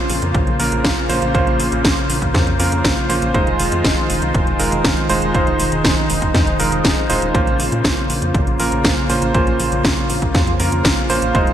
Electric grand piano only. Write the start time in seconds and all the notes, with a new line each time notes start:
Already playing: A#3 C#4 F4 C5
0.60 A#3 C#4 F4 A#4
1.09 A#3 C#4 F4 C5
1.35 A#3 C#4 F4 C5
2.60 A#3 C#4 F4 A#4
3.09 A#3 C#4 F4 C5
3.34 G#3 D#4 F4 C5
4.59 G#3 D#4 F4 A#4
5.10 G#3 D#4 F4 C5
5.35 G#3 D#4 F4 C5
6.60 G#3 D#4 F4 A#4
7.10 G#3 D#4 F4 C5
7.35 A#3 C#4 F4 C5
8.60 A#3 C#4 F4 A#4
9.10 A#3 C#4 F4 C5
9.35 A#3 C#4 F4 C5
10.60 A#3 C#4 F4 A#4
11.10 A#3 C#4 F4 C5
11.35 G#3 D#4 F4 C5